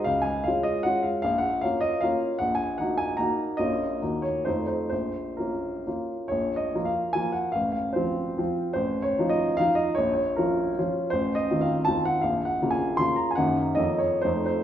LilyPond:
<<
  \new Staff \with { instrumentName = "Grand piano" } { \time 3/4 \key des \major \tempo 4 = 151 f''8 aes''8 f''8 ees''8 ges''8 f''8 | \key bes \minor f''8 ges''8 f''8 ees''8 f''4 | ges''8 aes''8 ges''8 aes''8 bes''4 | ees''4. des''8 c''8 c''8 |
c''4 bes'4. r8 | \tuplet 3/2 { des''4 ees''8~ ees''8 f''4 } aes''8 ges''8 | f''8 f''8 c''4. r8 | \tuplet 3/2 { c''4 des''8~ des''8 ees''4 } f''8 ees''8 |
des''8 des''8 bes'4. r8 | \tuplet 3/2 { c''4 ees''8~ ees''8 f''4 } a''8 ges''8 | \tuplet 3/2 { f''4 ges''8~ ges''8 aes''4 c'''8. bes''8 aes''16 } | ges''4 ees''8 des''8 c''8 c''8 | }
  \new Staff \with { instrumentName = "Grand piano" } { \time 3/4 \key des \major des,4 <aes des' f'>4 <aes des' f'>4 | \key bes \minor bes,,4 <bes des' f'>4 <bes des' f'>4 | bes,,4 <bes ees' ges'>4 <bes ees' ges'>4 | <bes,, bes des' f'>4 <ees, bes ees' ges'>4 <f, a ees' f'>4 |
bes,,4 <bes des' f'>4 <bes des' f'>4 | bes,,4 <f bes f'>4 <f bes f'>4 | a,,4 <f c' f'>4 <f c' f'>4 | a,,4 <f ees' f'>4 <f ees' f'>4 |
bes,,4 <f des' f'>4 <f des' f'>4 | a,,4 <ees c' f'>4 <ees c' f'>4 | bes,,4 <des bes f'>4 <des bes f'>4 | <ges, ees bes ees'>4 <f, f bes des'>4 <f, f a ees'>4 | }
>>